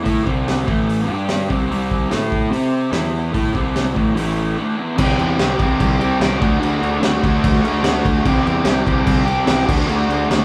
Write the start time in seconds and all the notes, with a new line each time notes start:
0.03 A2 A3 E4 A4, kick, open hi-hat
0.23 C2 C3 G3 C4, kick
0.48 snare, open hi-hat
0.65 A1 A2 E3 A3, kick
0.89 open hi-hat
1.06 G2 G3 D4 G4
1.29 snare, open hi-hat
1.49 C2 C3 G3 C4, kick
1.69 C2 C3 G3 C4, open hi-hat
1.91 kick
2.10 A2 A3 E4 A4, snare, open hi-hat
2.32 kick
2.51 C3 C4 G4 C5, open hi-hat
2.91 E2 E3 B3 E4, snare, open hi-hat
3.32 A2 A3 E4 A4, kick, open hi-hat
3.53 C2 C3 G3 C4, kick
3.76 snare, open hi-hat
3.93 A1 A2 E3 A3, kick
4.15 A1 A2 E3 A3, open hi-hat
4.27 snare
4.57 D3 A3 D4
4.76 E3 B3 E4
4.96 C2 C3 E3 G3 C4, kick, crash
5.01 G4
5.17 E2 C4 G4, crash
5.22 G3
5.37 C2 E3 G3 C4, snare, crash
5.41 G4
5.57 C2 C4 G4, kick, crash
5.61 G3
5.80 C2, kick, crash
5.99 C4 G4, crash
6.04 G3
6.19 C2 C3 E3 G3 C4, snare, crash
6.23 G4
6.38 A3 D4 F#4, kick, crash
6.42 D2 D3
6.57 D2 D3 A3 D4
6.62 F#4, crash
6.78 D4 F#4
6.82 D2 A3, crash
6.99 D2 D3 A3 D4, snare, crash
7.04 F#4
7.20 D2 D4 F#4, kick, crash
7.26 A3
7.44 D2, kick, crash
7.61 D2 D4 F#4, crash
7.67 A3
7.82 D2 D3 A3 D4, snare, crash
7.86 F#4
8.05 D2, kick, crash
8.24 C2 C3 E3 G3, kick, crash
8.28 C4 G4
8.44 E2 C4 G4, crash
8.48 G3
8.63 C2 E3 G3 C4, snare, crash
8.67 G4
8.84 C2 C4 G4, kick, crash
8.89 G3
9.07 C2, kick, crash
9.25 C4 G4, crash
9.30 G3
9.45 C2 C3 E3 G3 C4, snare, crash
9.50 G4
9.66 D2 A3 D4 F#4, kick, crash
9.71 D3
9.87 D2 D3 A3 D4, crash
9.92 F#4
10.08 D2 D4 F#4, crash
10.12 A3
10.28 D2 D3 A3 D4, snare, crash
10.33 F#4